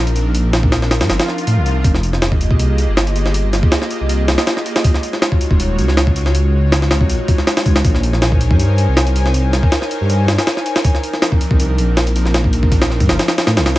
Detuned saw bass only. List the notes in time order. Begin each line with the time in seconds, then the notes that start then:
Already playing: A#1
1.01 A2
1.10 G1
1.47 A2
1.57 C2
1.84 F1
2.51 C2
2.88 G1
4.01 C2
5.51 D#1
5.78 C#2
7.01 C2
7.10 A#1
7.66 C#2
7.85 A#1
8.51 G2
8.88 C2
10.01 G2
11.51 C2
11.78 A#1
13.00 A2
13.10 G1
13.47 A2
13.57 C2